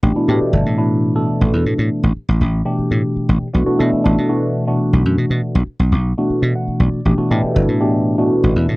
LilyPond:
<<
  \new Staff \with { instrumentName = "Tine electric piano" } { \time 7/8 \key b \phrygian \tempo 4 = 120 r2. r8 | r2. r8 | r2. r8 | r2 r8 fis''8 d''8 |
r2. r8 | }
  \new Staff \with { instrumentName = "Tine electric piano" } { \time 7/8 \key b \phrygian <b, e a d' g'>16 <b, e a d' e'>16 <b, e a d' g'>8 <b, e a d' a'>8 <b, e a d' e'>8. <b, e a d' a'>4~ <b, e a d' a'>16~ | <b, e a d' a'>8 r4 r16 <b, e a d' g'>4. r16 | <b, e a d' fis'>16 <b, e a d' fis'>16 <b, e a d' a'>8 <b, e a d' a'>8 <b, e a d' fis'>8. <b, e a d' fis'>4~ <b, e a d' fis'>16~ | <b, e a d' fis'>8 r4 r16 <b, e a d' fis'>4. r16 |
<b, e a d' g'>16 <b, e a d' fis'>16 <b, e a d' g'>8 <b, e a d' a'>8 <b, e a d' g'>8. <b, e a d' fis'>4~ <b, e a d' fis'>16 | }
  \new Staff \with { instrumentName = "Slap bass" } { \clef bass \time 7/8 \key b \phrygian a,,16 r16 a,16 r16 g,,16 a,4. a,,16 e,16 a,16 | a,16 r16 a,,16 r16 a,,16 a,,8 r8 a,16 r8 a,,16 r16 | b,,16 r16 b,16 r16 a,,16 b,4. b,,16 fis,16 b,16 | b,16 r16 b,,16 r16 b,,16 b,,8 r8 b,16 r8 b,,16 r16 |
a,,16 r16 a,16 r16 g,,16 a,4. a,,16 e,16 a,16 | }
>>